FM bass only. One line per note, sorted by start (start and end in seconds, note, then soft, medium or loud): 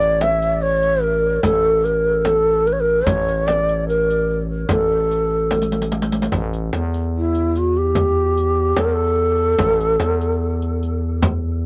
0.00 1.39 A1 loud
1.44 3.03 A1 medium
3.06 4.65 A1 loud
4.69 6.29 A1 medium
6.32 6.71 A1 loud
6.73 8.74 E2 medium
8.77 9.55 E2 medium
9.59 9.98 A1 loud
10.00 11.66 E2 medium